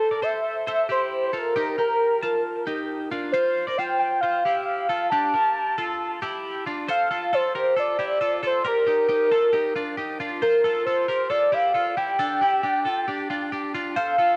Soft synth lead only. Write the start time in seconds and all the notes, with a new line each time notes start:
Already playing: A4
0.23 E5
0.68 E5
0.91 C5
1.28 C5
1.37 A#4
1.80 A#4
3.32 C5
3.77 G5
3.99 G5
4.21 F5
4.65 F5
5.10 A5
6.90 F5
7.34 C5
7.80 D5
8.47 C5
8.68 A#4
10.42 A#4
10.85 C5
11.30 D5
11.54 F5
11.97 G5
13.96 F5